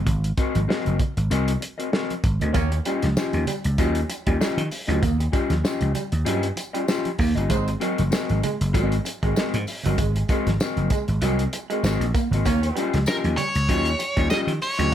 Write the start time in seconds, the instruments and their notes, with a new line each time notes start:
0.07 slap bass G#1, kick, closed hi-hat, muted conga, low conga
0.24 closed hi-hat
0.37 clean electric guitar C4 F#4 A#4 D#5, kick, closed hi-hat
0.55 slap bass G#1, closed hi-hat, high conga
0.68 clean electric guitar C4 F#4 A#4 D#5, snare, muted conga
0.85 slap bass F#1, closed hi-hat, high conga
0.99 muted clean electric guitar stroke, kick, closed hi-hat, low conga
1.17 slap bass G#1, muted clean electric guitar stroke, closed hi-hat
1.30 slap bass C2, clean electric guitar C4 F#4 A#4 D#5, closed hi-hat, muted conga
1.48 closed hi-hat
1.60 muted clean electric guitar stroke, closed hi-hat, muted conga
1.78 clean electric guitar C4 F#4 A#4 D#5, closed hi-hat
1.92 clean electric guitar C4 F#4 A#4 D#5, snare, muted conga
2.10 closed hi-hat, high conga
2.24 slap bass G#1, muted clean electric guitar stroke, kick, closed hi-hat, muted conga
2.40 slap bass D2, clean electric guitar C4 F#4 A#4 D#5, closed hi-hat, low conga
2.53 slap bass D#2, horn section A#3 C#4 G4 C#5, clean electric guitar A#3, kick, closed hi-hat, tambourine, low conga
2.72 muted clean electric guitar stroke, closed hi-hat
2.85 clean electric guitar G3 C#4 F4 G4 D#5, closed hi-hat, tambourine
3.02 slap bass C#2, snare, closed hi-hat, high conga
3.17 clean electric guitar C#4 F4 G4 D#5, snare, tambourine
3.33 slap bass D#2, closed hi-hat, high conga
3.46 clean electric guitar G3, muted clean electric guitar stroke, closed hi-hat, tambourine, low conga
3.64 slap bass C#2, muted clean electric guitar stroke, closed hi-hat
3.78 slap bass D#2, clean electric guitar F#3 C#4 F4 G4 D#5, kick, closed hi-hat, tambourine
3.95 closed hi-hat
4.08 muted clean electric guitar stroke, closed hi-hat, tambourine, muted conga
4.27 slap bass D#2, clean electric guitar G3 C#4 F4 G4 D#5, kick, closed hi-hat
4.40 clean electric guitar G3 C#4 F4 G4 D#5, snare, tambourine, muted conga
4.57 slap bass D#3, muted clean electric guitar stroke, closed hi-hat, high conga
4.71 muted clean electric guitar stroke, open hi-hat, tambourine
4.87 slap bass D2, clean electric guitar F#3 C#4 F4 G4 D#5, closed hi-hat, low conga
5.03 slap bass D#2, clean electric guitar A#3, kick, closed hi-hat, tambourine, muted conga, low conga
5.20 muted clean electric guitar stroke, closed hi-hat
5.32 clean electric guitar G3 C#4 F4 G4 D#5, kick, closed hi-hat, tambourine, muted conga
5.50 slap bass D#2, snare, closed hi-hat, high conga
5.64 clean electric guitar C#4 F4 G4 D#5, snare, tambourine, muted conga
5.80 slap bass C#2, closed hi-hat, high conga
5.95 clean electric guitar G3, muted clean electric guitar stroke, closed hi-hat, tambourine, muted conga, low conga
6.12 slap bass D#2, muted clean electric guitar stroke, closed hi-hat
6.25 slap bass G2, clean electric guitar F#3 C#4 F4 G4 D#5, closed hi-hat, tambourine
6.43 closed hi-hat
6.56 muted clean electric guitar stroke, closed hi-hat, tambourine, muted conga
6.73 clean electric guitar G3 C#4 F4 G4 D#5, closed hi-hat
6.88 clean electric guitar C#4 F4 G4 D#5, snare, tambourine, muted conga
7.05 closed hi-hat, high conga
7.19 slap bass D#2, clean electric guitar A#3, muted clean electric guitar stroke, kick, open hi-hat, tambourine
7.35 slap bass G1, clean electric guitar C#4 F4 G4 D#5, closed hi-hat, low conga
7.50 slap bass G#1, horn section F#3 C4 D#4 C5, clean electric guitar G#3, kick, closed hi-hat, tambourine, muted conga, low conga
7.68 muted clean electric guitar stroke, closed hi-hat
7.80 clean electric guitar F#3 C4 F#4 A#4 D#5, closed hi-hat
7.98 slap bass F#1, closed hi-hat, high conga
8.11 clean electric guitar C4 F#4 A#4 D#5, snare, tambourine, muted conga
8.29 slap bass G#1, closed hi-hat, high conga
8.43 clean electric guitar G#3, muted clean electric guitar stroke, closed hi-hat, tambourine, muted conga, low conga
8.61 slap bass F#1, muted clean electric guitar stroke, closed hi-hat
8.73 slap bass G#1, clean electric guitar F#3 C4 F#4 A#4 D#5, kick, closed hi-hat, tambourine, muted conga
8.92 closed hi-hat
9.04 muted clean electric guitar stroke, closed hi-hat, tambourine, muted conga
9.23 slap bass G#1, clean electric guitar G#3 C4 F#4 A#4 D#5, kick, closed hi-hat
9.36 clean electric guitar G#3 C4 F#4 A#4 D#5, snare, tambourine
9.53 slap bass G#2, muted clean electric guitar stroke, closed hi-hat, high conga
9.67 muted clean electric guitar stroke, open hi-hat, tambourine, muted conga
9.83 slap bass G1, clean electric guitar F#3 A#4 D#5, closed hi-hat, low conga
9.87 clean electric guitar C4 F#4
9.98 slap bass G#1, clean electric guitar G#3, kick, closed hi-hat, tambourine, muted conga, low conga
10.16 muted clean electric guitar stroke, closed hi-hat
10.28 clean electric guitar G#3 C4 F#4 A#4 D#5, kick, closed hi-hat, tambourine, muted conga
10.46 slap bass G#1, snare, closed hi-hat, high conga
10.60 clean electric guitar C4 F#4 A#4 D#5, snare, tambourine
10.77 slap bass F#1, closed hi-hat, high conga
10.90 clean electric guitar G#3, muted clean electric guitar stroke, kick, closed hi-hat, tambourine, muted conga, low conga
11.08 slap bass G#1, muted clean electric guitar stroke, closed hi-hat
11.22 slap bass C2, clean electric guitar F#3 C4 F#4 A#4 D#5, closed hi-hat, tambourine
11.39 closed hi-hat
11.53 muted clean electric guitar stroke, closed hi-hat, tambourine
11.70 clean electric guitar G#3 C4 F#4 A#4 D#5, closed hi-hat
11.83 slap bass G#1, clean electric guitar C4 F#4 A#4 D#5, snare, tambourine
12.00 slap bass A#1, closed hi-hat, high conga
12.14 clean electric guitar A#3, muted clean electric guitar stroke, kick, closed hi-hat, tambourine, muted conga
12.31 slap bass G#1, clean electric guitar C4 F#4 A#4 D#5, closed hi-hat, low conga
12.44 slap bass D#2, horn section A#3 C#4 G4 C#5, clean electric guitar A#3, kick, closed hi-hat, tambourine, muted conga, low conga
12.63 muted clean electric guitar stroke, closed hi-hat
12.76 clean electric guitar G3 C#4 F4 G4 D#5, closed hi-hat
12.94 slap bass C#2, snare, closed hi-hat, high conga
13.06 clean electric guitar C#4 F4 G4 D#5, lead electric guitar A#4, snare, tambourine
13.24 slap bass D#2, closed hi-hat, high conga
13.37 clean electric guitar G3, lead electric guitar C#5, muted clean electric guitar stroke, closed hi-hat, tambourine, muted conga, low conga
13.55 slap bass C#2, muted clean electric guitar stroke, closed hi-hat
13.69 slap bass D#2, clean electric guitar F#3 C#4 F4 G4 D#5, kick, closed hi-hat, muted conga
13.85 closed hi-hat
13.99 muted clean electric guitar stroke, closed hi-hat, tambourine, muted conga
14.17 slap bass D#2, clean electric guitar G3 C#4 F4 G4 D#5, kick, closed hi-hat
14.30 clean electric guitar G3 C#4 F4 G4 D#5, lead electric guitar D#5, snare, tambourine
14.47 slap bass D#3, muted clean electric guitar stroke, closed hi-hat, high conga
14.62 lead electric guitar C#5, muted clean electric guitar stroke, open hi-hat, tambourine
14.78 slap bass D2, clean electric guitar F#3 C#4 F4 G4 D#5, closed hi-hat, low conga